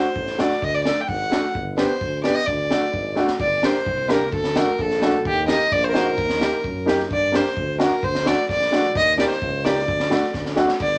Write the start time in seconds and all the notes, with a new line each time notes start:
Already playing: C5
0.16 A1, kick
0.27 snare
0.38 A3 D4 F#4 D5, snare
0.51 snare
0.62 D2 D#5, kick
0.75 D5
0.85 A3 D4 A4 D5, snare
1.01 G5
1.08 G#1 F#5, kick
1.30 A3 D4 F#4, snare
1.55 G1, kick
1.77 B3 D4 G4 C5, snare
2.01 D2, kick
2.24 B3 D4 G4 D5, snare
2.35 D#5
2.46 D2 D5, kick
2.70 A3 D4 F#4, snare
2.94 G#1, kick
3.15 A3 D4 F#4, snare
3.28 snare
3.40 G1 D5, kick
3.63 A#3 D4 G4 C5, snare
3.75 snare
3.86 C2, kick
4.08 A#3 D4 G4 A#4, snare
4.32 D2 A4, kick
4.44 snare
4.55 A3 D4 F#4 A#4, snare
4.79 A#1 A4, kick
4.90 snare
5.01 A3 D4 F#4, snare
5.25 D#2 G4, kick
5.48 A#3 D#4 G4 D#5, snare
5.71 A#1 D5, kick
5.84 C5
5.89 A#4 C5
5.93 A#3 D#4 F#4 A#4, snare
6.18 D#2, kick
6.29 snare
6.39 A#3 D#4 G4, snare
6.64 F#2, kick
6.86 A#3 D#4 G4, snare
7.00 snare
7.11 G2 D5, kick
7.32 A#3 D4 G4 C5, snare
7.46 snare
7.57 D2, kick
7.78 A#3 D4 F#4 A#4, snare
8.03 D2 C5, kick
8.15 snare
8.25 A3 D4 F#4 D5, snare
8.49 A#1 D5, kick, snare
8.61 snare
8.71 A3 D4 F#4, snare
8.95 D#2 D#5, kick
9.18 A#3 D#4 G4 D5, snare
9.30 C5, snare
9.41 C#2, kick
9.64 A#3 D#4 G4 D5, snare
9.78 snare
9.88 D2, kick
10.00 snare
10.09 A3 D4 F#4, snare
10.23 snare
10.34 D2, kick, snare
10.46 snare
10.56 A3 D4 F#4, snare
10.69 snare
10.80 G1 D5, kick, crash